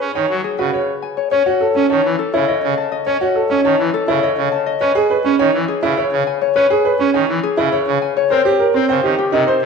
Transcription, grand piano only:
0.15 0.34 C#5 medium
0.59 0.78 F#4 medium
0.73 0.92 C#5 medium
1.31 1.50 C#5 medium
1.46 1.65 F#4 medium
1.61 1.80 A4 medium
1.75 1.94 C#4 medium
1.90 2.09 C#5 medium
2.34 2.52 E4 medium
2.48 2.67 C#5 medium
3.06 3.25 C#5 medium
3.21 3.40 F#4 medium
3.36 3.54 A4 medium
3.50 3.69 C#4 medium
3.65 3.84 C#5 medium
4.08 4.27 E4 medium
4.23 4.42 C#5 medium
4.81 5.00 C#5 medium
4.95 5.14 G#4 medium
5.10 5.29 B4 medium
5.25 5.44 C#4 medium
5.39 5.58 C#5 medium
5.83 6.02 E4 medium
5.97 6.16 C#5 medium
6.56 6.75 C#5 medium
6.70 6.89 G#4 medium
6.85 7.04 B4 medium
6.99 7.18 C#4 medium
7.14 7.33 C#5 medium
7.57 7.77 E4 medium
7.72 7.91 C#5 medium
8.30 8.49 C5 medium
8.45 8.64 G4 medium
8.60 8.79 A#4 medium
8.74 8.93 C4 medium
8.89 9.08 C5 medium
9.04 9.22 G4 medium
9.32 9.51 D#4 medium
9.47 9.65 C5 medium

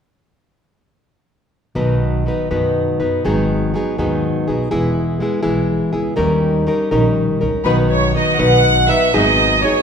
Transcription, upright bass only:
1.76 2.24 B1 medium
2.51 2.83 F#2 medium
3.00 3.15 F#2 medium
3.25 3.73 G#1 medium
3.99 4.30 D#2 medium
4.48 4.63 B1 medium
4.72 5.19 E1 medium
5.45 5.77 B1 medium
5.94 6.10 C#2 medium
6.18 6.66 D#2 medium
6.92 7.24 A#1 medium
7.43 7.58 C#2 medium
7.65 8.13 B1 medium
8.40 8.88 B1 medium
9.15 9.62 G#1 medium

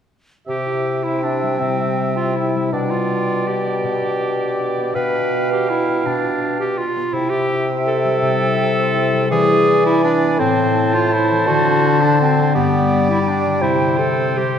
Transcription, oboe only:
0.47 2.68 E5 soft
2.73 4.96 D5 soft
4.95 6.88 F5 soft
7.13 9.27 E5 medium
9.31 10.41 D5 medium
10.39 12.54 C5 medium
12.55 13.63 D5 medium
13.62 14.59 C5 medium

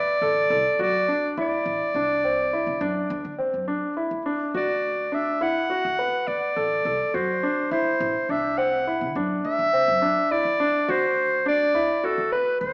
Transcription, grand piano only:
0.00 0.14 B4 medium
0.22 0.47 A4 medium
0.51 0.76 A4 medium
0.79 1.04 F#4 medium
1.08 1.33 D4 medium
1.38 1.88 E4 medium
1.95 2.20 D4 medium
2.24 2.49 C4 medium
2.53 2.78 E4 medium
2.81 3.31 D4 medium
3.38 3.64 C4 medium
3.68 3.93 D4 medium
3.97 4.22 E4 medium
4.26 4.51 D4 medium
4.55 5.05 F#4 medium
5.12 5.37 D4 medium
5.41 5.66 E4 medium
5.70 5.95 F#4 medium
5.99 6.49 B4 medium
6.56 6.82 A4 medium
6.85 7.10 A4 medium
7.14 7.39 F#4 medium
7.43 7.68 D4 medium
7.71 8.22 E4 medium
8.29 8.55 D4 medium
8.58 8.83 C4 medium
8.87 9.12 E4 medium
9.16 9.66 D4 medium
9.73 9.98 C4 medium
10.02 10.27 D4 medium
10.31 10.56 E4 medium
10.60 10.85 D4 medium
10.88 11.39 F#4 medium
11.46 11.71 D4 medium
11.75 12.00 E4 medium
12.04 12.29 F#4 medium
12.32 12.73 B4 medium

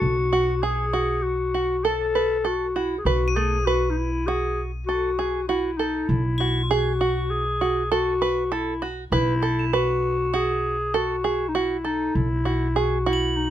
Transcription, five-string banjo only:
0.00 0.15 A4 medium
0.33 0.54 F#4 medium
0.63 0.84 G#4 medium
0.93 1.36 F#4 medium
1.54 1.76 F#4 medium
1.85 2.06 A4 medium
2.15 2.36 B4 medium
2.45 2.66 A4 medium
2.76 2.97 F#4 medium
3.06 3.28 B4 medium
3.36 3.58 A3 medium
3.67 4.10 B4 medium
4.28 4.70 F#4 medium
4.89 5.10 A4 medium
5.19 5.40 G#4 medium
5.49 5.70 F#4 medium
5.79 6.22 A4 medium
6.40 6.61 F#4 medium
6.71 6.92 G#4 medium
7.01 7.43 F#4 medium
7.61 7.82 F#4 medium
7.92 8.13 A4 medium
8.22 8.43 B4 medium
8.52 8.73 A4 medium
8.82 9.03 F#4 medium
9.12 9.34 B4 medium
9.42 9.64 A4 medium
9.73 10.16 B4 medium
10.34 10.76 F#4 medium
10.94 11.15 A4 medium
11.24 11.46 G#4 medium
11.55 11.76 F#4 medium
11.85 12.27 A4 medium
12.45 12.67 F#4 medium
12.76 12.97 G#4 medium
13.06 13.49 F#4 medium

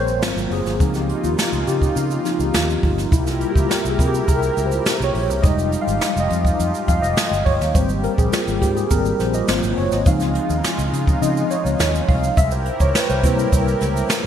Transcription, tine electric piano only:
0.00 0.25 G3 medium
0.00 0.22 A#3 soft
0.00 0.22 C4 medium
0.00 0.24 G#4 medium
0.00 0.24 A#4 loud
0.00 0.53 C5 loud
0.00 0.24 C#5 loud
0.22 0.77 F#3 medium
0.22 0.77 A#3 soft
0.22 0.77 C4 soft
0.22 0.78 F4 medium
0.52 0.92 G#4 medium
0.80 2.23 F3 medium
0.80 2.24 C4 soft
0.80 1.38 D#4 medium
0.96 1.22 G4 medium
1.25 1.31 F4 medium
1.39 1.66 D#4 medium
1.68 2.08 G4 medium
2.11 2.26 F4 medium
2.24 2.51 F3 soft
2.24 2.51 C4 soft
2.24 2.79 D#4 medium
3.11 3.50 G3 medium
3.11 3.50 A#3 soft
3.11 3.51 E4 medium
3.31 3.49 F4 medium
3.51 3.71 G4 medium
3.69 3.88 A#4 medium
3.89 4.09 G#4 medium
4.08 4.28 G4 medium
4.28 4.67 A#4 loud
4.66 5.06 C5 medium
5.04 5.44 C#5 loud
5.42 7.70 G3 medium
5.42 7.71 G#3 soft
5.42 7.71 D#4 medium
5.42 5.79 D#5 loud
5.81 6.18 F5 medium
6.20 6.33 D#5 medium
6.88 7.03 F5 medium
7.02 7.47 D#5 medium
7.45 7.76 C#5 loud
7.74 8.57 G3 medium
7.74 8.58 A#3 soft
7.74 8.58 C4 medium
7.74 8.05 C5 medium
8.04 8.10 A#4 medium
8.18 8.33 G#4 medium
8.32 8.62 F4 medium
8.61 8.76 G4 medium
8.77 8.91 G#4 medium
8.90 9.16 G3 medium
8.90 9.17 A#3 medium
8.90 9.17 C4 medium
8.90 9.18 A#4 loud
9.20 9.34 C5 medium
9.34 9.48 D#5 medium
9.48 9.87 F#3 medium
9.48 9.87 A#3 soft
9.48 9.87 C4 soft
9.48 9.87 F4 medium
9.48 9.78 C5 medium
9.78 9.92 C#5 medium
9.93 10.06 D#5 medium
10.06 10.44 F3 medium
10.06 10.45 C4 soft
10.06 10.45 D#4 medium
10.06 10.33 F5 medium
11.21 11.47 F3 medium
11.21 11.47 C4 soft
11.21 11.48 D#4 medium
11.21 11.51 D#5 loud
11.51 12.04 C#5 medium
12.08 12.38 F5 loud
12.37 12.52 E5 loud
12.52 12.81 C5 medium
12.81 12.95 C#5 medium
12.95 13.10 B4 medium
13.09 13.39 C5 medium
13.24 13.62 G3 medium
13.24 13.62 A#3 medium
13.24 13.62 E4 medium
13.38 14.20 A#4 medium

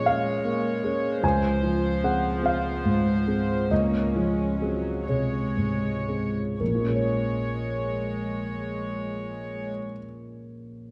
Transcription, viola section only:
0.00 1.19 C#5 soft
0.06 1.21 G#3 soft
1.23 3.71 F3 soft
1.23 2.42 C5 soft
2.43 3.68 C5 soft
3.71 4.14 A#3 soft
3.71 5.07 C#4 soft
4.16 4.61 G#3 soft
4.61 5.06 F#3 soft
5.08 6.34 G#3 soft
5.08 6.32 C#5 soft
6.59 9.69 G#3 soft
6.59 9.69 C#5 soft

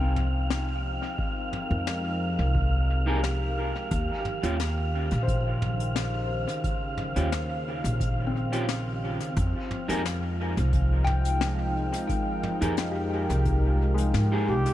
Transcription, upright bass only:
0.00 0.99 C2 medium
1.71 2.35 F2 medium
2.39 3.72 C2 medium
3.91 4.07 D#2 medium
4.44 5.08 D#2 medium
5.12 6.45 A#1 medium
7.16 7.81 D#2 medium
7.84 9.17 A#1 medium
9.37 9.53 F2 medium
9.89 10.54 F2 medium
10.57 11.90 C2 medium
12.62 13.26 F2 medium
13.30 14.13 C2 medium
14.14 14.50 G#2 medium
14.48 14.64 C2 medium

